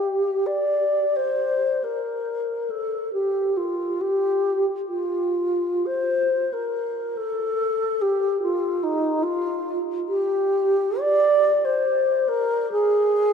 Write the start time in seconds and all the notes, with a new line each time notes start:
Already playing: G4
0.46 D5
1.16 C5
1.83 A#4
2.70 A4
3.13 G4
3.57 F4
4.00 G4
4.87 F4
5.85 C5
6.53 A#4
7.17 A4
8.01 G4
8.42 F4
8.83 D#4
9.23 F4
10.08 G4
11.00 D5
11.64 C5
12.28 A#4
12.71 G#4